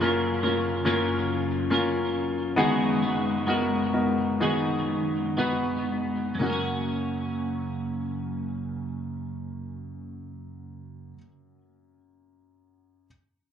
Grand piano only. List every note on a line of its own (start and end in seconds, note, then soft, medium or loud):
0.00 2.54 F#1 medium
0.00 2.54 F#2 medium
0.00 0.43 A#3 medium
0.00 0.43 C#4 medium
0.00 0.02 F4 medium
0.00 0.41 F4 medium
0.00 0.02 A#4 medium
0.00 0.42 A#4 medium
0.43 0.83 A#3 medium
0.43 0.83 C#4 medium
0.43 0.83 F4 medium
0.43 0.84 A#4 medium
0.85 1.66 A#3 medium
0.85 1.66 C#4 medium
0.85 1.66 F4 medium
0.85 1.66 A#4 medium
1.70 2.53 A#3 medium
1.70 2.53 C#4 medium
1.70 2.53 F4 medium
1.70 2.54 A#4 medium
2.56 6.37 F#1 medium
2.56 6.37 F#2 medium
2.56 3.43 B3 medium
2.56 3.43 D#4 medium
2.56 3.43 F#4 medium
2.56 3.43 G#4 medium
3.47 3.91 B3 medium
3.47 3.91 D#4 medium
3.47 3.91 F#4 medium
3.47 3.92 A#4 medium
3.93 4.38 B3 soft
3.93 4.38 D#4 soft
3.93 4.39 F#4 soft
3.93 4.39 A#4 medium
4.40 5.33 B3 medium
4.40 5.33 D#4 medium
4.40 5.33 F#4 medium
4.40 5.33 G#4 medium
5.37 6.35 B3 soft
5.37 6.35 D#4 soft
5.37 6.35 F#4 soft
5.37 6.36 B4 medium
6.39 11.15 F#2 soft
6.39 11.13 A#3 soft
6.39 11.15 C#4 soft
6.39 11.16 F#4 soft
6.43 11.17 A#4 soft